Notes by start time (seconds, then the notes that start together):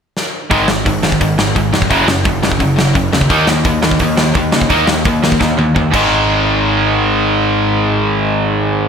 0.17 snare
0.50 G#1 G#2 D#3 G#3, kick, open hi-hat
0.68 G#1 G#2 D#3, snare
0.86 G#1 G#2 D#3, kick, open hi-hat
1.03 G#2 D#3, snare
1.12 kick
1.21 G#1 G#2 D#3, kick, open hi-hat
1.38 G#2 D#3, snare
1.55 G#1 G#2 D#3, kick, open hi-hat
1.73 F2 G#2 D#3, snare
1.82 kick
1.90 F#1 F#2 C#3 F#3, kick, open hi-hat
2.06 F#1 F#2 C#3, snare
2.24 F#1 F#2 C#3, kick, open hi-hat
2.43 F#2 C#3, snare
2.52 kick
2.59 F#1 F#2 C#3, kick, open hi-hat
2.76 F#2 C#3, snare
2.93 F#1 F#2 C#3, kick, open hi-hat
3.12 D#2 F#2 C#3, snare
3.21 kick
3.29 D#2 D#3 A#3 D#4, kick, open hi-hat
3.47 D#2 D#3 A#3, snare
3.64 D#2 D#3 A#3, kick, open hi-hat
3.83 D#3 A#3, snare
3.91 kick
3.99 D#2 D#3 A#3, kick, open hi-hat
4.17 D#3 A#3, snare
4.35 D#2 D#3 A#3, kick, open hi-hat
4.52 C#3 D#3 A#3, snare
4.61 kick
4.70 D#2 D#3 A#3 D#4, kick, open hi-hat
4.87 D#2 D#3 A#3, snare
5.05 D#2 D#3 A#3, kick, open hi-hat
5.24 D#3 A#3, snare
5.32 kick
5.40 D#2 D#3 A#3, kick, snare
5.58 D#3 A#3, high tom
5.76 D#2 D#3 A#3, kick, mid tom
5.92 G#1 G#2 D#3, kick, crash
5.96 G#3